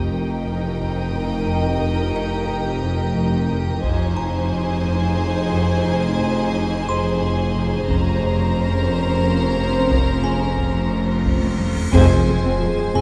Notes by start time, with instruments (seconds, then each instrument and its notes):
Already playing: double bass section F1, harp F2, cello section F2, viola section D#4, ambient pad G4 D#5 A#5, violin section A#4 G5, music box G5 G6 A#6
0.13 harp F2
0.47 harp F2
0.80 harp F2, taiko
1.14 harp F2
1.47 harp F2
1.81 harp F2
2.15 harp F2, music box D#5 C#7
2.49 harp F2
2.83 harp F2
3.16 harp F2
3.51 harp F2
3.83 double bass section F1, cello section F2, harp F2, viola section D#4, ambient pad G#4 C5 D#5, violin section C5 G#5, taiko
4.17 harp F2, music box A#5
4.52 harp F2
4.85 harp F2
5.19 harp F2
5.53 harp F2
5.87 harp F2
6.20 harp F2
6.54 harp F2
6.88 harp F2, music box C6
7.21 harp F2
7.55 harp F2
7.88 double bass section F1, cello section F2, harp F2, ambient pad C#4 A#4 C6, viola section C#4, violin section C5 A#5, taiko
8.22 harp F2
8.56 harp F2
8.89 harp F2
9.23 harp F2
9.57 harp F2
9.90 harp F2, taiko, cymbal swell
10.24 harp F2, music box G#4 G#5
10.58 harp F2, taiko
10.92 harp F2
11.25 harp F2, taiko
11.42 taiko high
11.59 harp F2, taiko high
11.76 taiko low
11.92 double bass section F1, timpani F2, harp F2, cello section F2, trombone section F3 G#3, viola section C4, french horn section C4 G#4, ambient pad G#4 C5 C6, violin section C5 G#5, taiko, sub drop
12.09 cello section F2, viola section F3
12.27 double bass section F1, harp F2, cello section F2, viola section G#3
12.43 cello section F2, viola section C4
12.59 double bass section F1, cello section F2, viola section F3, harp F3
12.77 cello section F2, viola section G#3
12.93 double bass section F1, cello section F2, harp F2, viola section C4, music box G#4 G#5